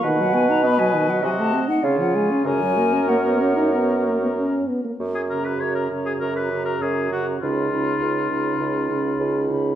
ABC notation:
X:1
M:4/4
L:1/16
Q:1/4=99
K:F#
V:1 name="Flute"
z f g a b g2 f g =a2 _g e f ^g2 | g4 f8 z4 | z2 a4 a4 a4 a2 | b2 b4 b4 b4 b2 |]
V:2 name="Oboe"
B8 _G2 z2 E4 | A12- A2 z2 | z G A B c A2 G A B2 A G2 F2 | E12- E2 z2 |]
V:3 name="Clarinet"
f4 d4 _e4 c4 | c12- c2 z2 | z2 F4 F4 F4 F2 | D2 D4 D4 D4 D2 |]
V:4 name="French horn" clef=bass
D, F, B, D B, F, D, F, _G, =A, =C _E ^C, ^E, ^G, ^C | C, F, A, C A, B, C D B,2 A, B, C2 B, A, | z2 C,4 C,4 C,4 C,2 | C,2 C,4 C,4 C,4 C,2 |]
V:5 name="Bassoon" clef=bass
B,,8 =C,2 z2 ^C,4 | F,,12- F,,2 z2 | F,,4 F,,4 F,,4 F,,4 | C,,4 C,,4 C,,4 C,,4 |]